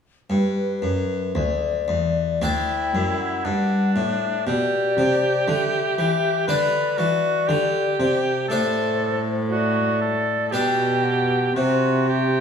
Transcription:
0.30 harpsichord G2, cello G2, flute B4
0.82 harpsichord F#2, cello F#2
1.35 harpsichord D2, cello D2, flute D5
1.88 harpsichord E2, cello E2
2.42 harpsichord D2 D4 D5, cello D2, oboe E4, flute G5
2.94 cello F#2, harpsichord F#2
3.20 flute F#5
3.45 cello G2, harpsichord G2, oboe D4
3.95 harpsichord A2, cello A2, flute E5
4.47 harpsichord B2, cello B2, oboe G4, flute D5
4.98 cello C3, harpsichord C3
5.48 harpsichord D3, cello D3, flute E5
5.98 cello E3, harpsichord E3
6.48 harpsichord D3 D4 D5, cello D3, oboe B4, flute D5
6.98 harpsichord E3, cello E3, oboe F#4
7.48 harpsichord D3, cello D3, oboe G4
8.00 cello C3, harpsichord C3
8.49 harpsichord A2 D4 D5, cello A2, oboe A4, flute C5
9.51 oboe F#4, flute D5
10.01 oboe A4
10.52 harpsichord B2 D4 D5, cello B2, oboe G4, flute G5
11.03 flute F#5
11.56 cello C3, harpsichord C3, oboe F#4, flute E5
12.08 oboe G4

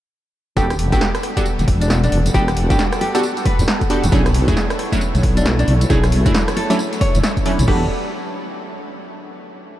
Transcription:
0.57 wobble bass E1, analog synth pad G3 B3 A4 F#5, synth stab B3 D4 F#4 G4 A4, nylon-string guitar G4, kick, tambourine
0.70 cross-stick, closed hi-hat, tambourine
0.79 open hi-hat
0.92 wobble bass A1, synth stab B3 D4 F#4 G4 A4, nylon-string guitar G4, kick, closed hi-hat, tambourine
1.01 snare, tambourine
1.15 cross-stick, closed hi-hat, tambourine
1.23 cross-stick, open hi-hat
1.37 synth stab B3 D4 F#4 G4 A4, kick, closed hi-hat, tambourine
1.46 tambourine
1.59 wobble bass E1, closed hi-hat, tambourine
1.68 wobble bass E1, kick, open hi-hat
1.81 nylon-string guitar D4, closed hi-hat, tambourine
1.90 snare, tambourine
2.04 nylon-string guitar D4, closed hi-hat, tambourine
2.12 wobble bass E1, open hi-hat
2.26 closed hi-hat, tambourine
2.34 wobble bass E1, synth stab B3 D4 F#4 G4 A4, nylon-string guitar G4, kick, tambourine
2.48 cross-stick, closed hi-hat, tambourine
2.57 open hi-hat
2.70 wobble bass A1, synth stab B3 D4 F#4 G4 A4, nylon-string guitar G4, kick, closed hi-hat, tambourine
2.79 snare, tambourine
2.93 cross-stick, closed hi-hat, tambourine
3.01 nylon-string guitar G4, open hi-hat
3.15 synth stab B3 D4 F#4 G4 A4, closed hi-hat, tambourine
3.23 tambourine
3.37 closed hi-hat, tambourine
3.46 nylon-string guitar B4, kick, open hi-hat
3.59 wobble bass E2, closed hi-hat, tambourine
3.68 snare, tambourine
3.81 kick, closed hi-hat, tambourine
3.90 synth stab B3 D4 F#4 G4 A4, open hi-hat
4.04 wobble bass E1, closed hi-hat, tambourine
4.12 wobble bass B1, synth stab F#3 A3 C#4 D4 E4, analog synth pad E4 C#5, nylon-string guitar G#4, kick, tambourine
4.26 cross-stick, closed hi-hat, tambourine
4.34 open hi-hat
4.48 wobble bass E2, synth stab F#3 A3 C#4 D4 E4, nylon-string guitar G#4, kick, closed hi-hat, tambourine
4.57 snare, tambourine
4.70 cross-stick, closed hi-hat, tambourine
4.79 cross-stick, open hi-hat
4.92 synth stab F#3 A3 C#4 D4 E4, kick, closed hi-hat, tambourine
5.01 tambourine
5.15 wobble bass B1, closed hi-hat, tambourine
5.23 wobble bass B1, kick, open hi-hat
5.37 nylon-string guitar D4, closed hi-hat, tambourine
5.46 snare, tambourine
5.59 nylon-string guitar D4, closed hi-hat, tambourine
5.68 wobble bass B1, open hi-hat
5.81 closed hi-hat, tambourine
5.90 wobble bass B1, synth stab F#3 A3 C#4 D4 E4, nylon-string guitar G#4, kick, tambourine
6.04 cross-stick, closed hi-hat, tambourine
6.12 open hi-hat
6.26 wobble bass E2, synth stab F#3 A3 C#4 D4 E4, nylon-string guitar G#4, kick, closed hi-hat, tambourine
6.35 snare, tambourine
6.48 cross-stick, closed hi-hat, tambourine
6.56 nylon-string guitar A4, open hi-hat
6.70 synth stab F#3 A3 C#4 D4 E4, closed hi-hat, tambourine
6.79 tambourine
6.93 closed hi-hat, tambourine
7.01 nylon-string guitar C#5, kick, open hi-hat
7.15 wobble bass F#1, closed hi-hat, tambourine
7.24 snare, tambourine
7.37 kick, closed hi-hat, tambourine
7.46 synth stab F#3 A3 C#4 D4 E4, open hi-hat
7.59 wobble bass B1, closed hi-hat, tambourine
7.68 wobble bass E1, synth stab B3 D4 F#4 G4 A4, analog synth pad F#4 G4 A4 D5, nylon-string guitar B4, kick, crash

